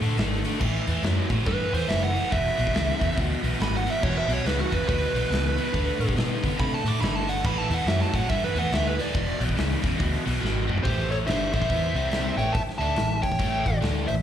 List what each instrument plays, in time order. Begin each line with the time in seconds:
0.01 fingered electric bass A2, overdriven electric guitar D3 A3, open hi-hat
0.17 fingered electric bass G#1, overdriven electric guitar D3 A3, snare, open hi-hat
0.32 snare
0.44 overdriven electric guitar D3 A3, open hi-hat
0.59 fingered electric bass A1, overdriven electric guitar A2 E3, kick, crash
0.87 fingered electric bass E2, overdriven electric guitar A2 E3, open hi-hat
1.03 fingered electric bass F#2, overdriven electric guitar A2 F#3, snare, open hi-hat
1.29 fingered electric bass A2, overdriven electric guitar A2 F#3, kick, snare, open hi-hat
1.46 fingered electric bass G2, overdriven electric guitar A2 E3, lead electric guitar B4, kick, open hi-hat
1.72 fingered electric bass E2, overdriven electric guitar A2 E3, lead electric guitar C5, open hi-hat
1.87 fingered electric bass F#1, overdriven electric guitar A2 E3, lead electric guitar E5, snare, open hi-hat
2.04 lead electric guitar F#5
2.13 overdriven electric guitar A2 E3, open hi-hat
2.31 fingered electric bass E1, overdriven electric guitar E2 B2, lead electric guitar E5, kick, open hi-hat
2.57 fingered electric bass B1, overdriven electric guitar E2 B2, open hi-hat
2.67 kick
2.74 fingered electric bass C#2, overdriven electric guitar E2 C#3, snare, open hi-hat
3.00 overdriven electric guitar E2 C#3, fingered electric bass E2, kick, open hi-hat
3.16 fingered electric bass D2, overdriven electric guitar E2 B2, kick, open hi-hat
3.42 fingered electric bass B1, overdriven electric guitar E2 B2, open hi-hat
3.59 fingered electric bass G#1, overdriven electric guitar E2 B2, lead electric guitar B5, snare, open hi-hat
3.77 lead electric guitar F#5
3.86 overdriven electric guitar E2 B2, lead electric guitar E5, open hi-hat
4.01 fingered electric bass E1, overdriven electric guitar E2 B2, lead electric guitar C#5, kick, crash
4.18 lead electric guitar E5
4.28 fingered electric bass B1, overdriven electric guitar E2 B2, open hi-hat
4.33 lead electric guitar C#5
4.44 fingered electric bass C#2, overdriven electric guitar E2 C#3, lead electric guitar B4, snare, open hi-hat
4.60 lead electric guitar F#4
4.71 overdriven electric guitar E2 C#3, fingered electric bass E2, lead electric guitar B4, kick, open hi-hat
4.87 fingered electric bass D2, overdriven electric guitar E2 B2, lead electric guitar B4, kick, open hi-hat
5.13 fingered electric bass B1, overdriven electric guitar E2 B2, open hi-hat
5.30 fingered electric bass C#2, overdriven electric guitar E2 B2, snare, open hi-hat
5.57 overdriven electric guitar E2 B2, open hi-hat
5.73 fingered electric bass D2, overdriven electric guitar D3 A3, kick, open hi-hat
5.99 fingered electric bass A2, overdriven electric guitar D3 A3, open hi-hat
6.09 kick
6.15 fingered electric bass B2, overdriven electric guitar D3 B3, snare, open hi-hat
6.43 overdriven electric guitar D3 B3, fingered electric bass D3, kick, snare, open hi-hat
6.58 fingered electric bass C3, overdriven electric guitar D3 A3, lead electric guitar B5, kick, open hi-hat
6.74 lead electric guitar A5
6.84 fingered electric bass A2, overdriven electric guitar D3 A3, lead electric guitar D6, open hi-hat
7.00 fingered electric bass G1, overdriven electric guitar D3 A3, lead electric guitar B5, snare, open hi-hat
7.16 lead electric guitar A5
7.27 overdriven electric guitar D3 A3, lead electric guitar F#5, open hi-hat
7.44 fingered electric bass A1, overdriven electric guitar A2 E3, lead electric guitar B5, kick, crash
7.58 lead electric guitar A5
7.70 fingered electric bass E2, overdriven electric guitar A2 E3, open hi-hat
7.74 lead electric guitar F#5
7.86 fingered electric bass F#2, overdriven electric guitar A2 F#3, lead electric guitar E5, snare, open hi-hat
8.02 lead electric guitar A5
8.13 overdriven electric guitar A2 F#3, fingered electric bass A2, lead electric guitar F#5, kick, open hi-hat
8.29 fingered electric bass G2, overdriven electric guitar A2 E3, lead electric guitar E5, kick, open hi-hat
8.44 lead electric guitar B4
8.55 fingered electric bass E2, overdriven electric guitar A2 E3, lead electric guitar F#5, open hi-hat
8.72 fingered electric bass D2, overdriven electric guitar A2 E3, lead electric guitar E5, snare, open hi-hat
8.87 lead electric guitar B4
8.99 overdriven electric guitar A2 E3, lead electric guitar D5, open hi-hat
9.14 fingered electric bass E1, overdriven electric guitar E2 B2, kick, open hi-hat
9.40 fingered electric bass B1, overdriven electric guitar E2 B2, open hi-hat
9.49 kick
9.55 fingered electric bass C#2, overdriven electric guitar E2 C#3, snare, open hi-hat
9.82 overdriven electric guitar E2 C#3, fingered electric bass E2, kick, snare, open hi-hat
9.97 fingered electric bass D2, overdriven electric guitar E2 B2, kick, open hi-hat
10.25 fingered electric bass B1, overdriven electric guitar E2 B2, open hi-hat
10.40 fingered electric bass G#1, overdriven electric guitar E2 B2
10.45 snare
10.67 overdriven electric guitar E2 B2, mid tom
10.78 floor tom
10.83 fingered electric bass A1, overdriven electric guitar A2 E3 A3, lead electric guitar G4 C5, kick, open hi-hat
11.11 lead electric guitar A4 C#5, open hi-hat
11.27 fingered electric bass G1, overdriven electric guitar G2 D3 G3, lead electric guitar C5 E5, snare, open hi-hat
11.53 fingered electric bass A1, overdriven electric guitar A2 E3 A3, lead electric guitar C5 E5, kick, open hi-hat
11.62 kick, snare
11.69 fingered electric bass E2, overdriven electric guitar E3 B3 E4, kick, open hi-hat
11.94 fingered electric bass C2, overdriven electric guitar C3 G3 C4, open hi-hat
12.12 snare, open hi-hat
12.36 fingered electric bass A1, overdriven electric guitar A2 E3 A3, lead electric guitar C#5 G5, open hi-hat
12.52 lead electric guitar E5 A5, muted overdriven electric guitar stroke, kick, open hi-hat
12.70 snare
12.78 fingered electric bass D2, overdriven electric guitar D3 A3 D4, lead electric guitar E5 A5, open hi-hat
12.96 fingered electric bass A1, overdriven electric guitar A2 E3, snare, open hi-hat
13.22 fingered electric bass A1, overdriven electric guitar A2 E3, lead electric guitar C#5 G5, kick, open hi-hat
13.32 kick, snare
13.39 fingered electric bass A1, overdriven electric guitar A2 E3 A3, kick, open hi-hat
13.65 fingered electric bass A1, overdriven electric guitar A2 E3, kick, open hi-hat
13.81 fingered electric bass D2, overdriven electric guitar D3 A3 D4, snare, open hi-hat
14.07 fingered electric bass A1, overdriven electric guitar A2 E3, lead electric guitar C5 E5, open hi-hat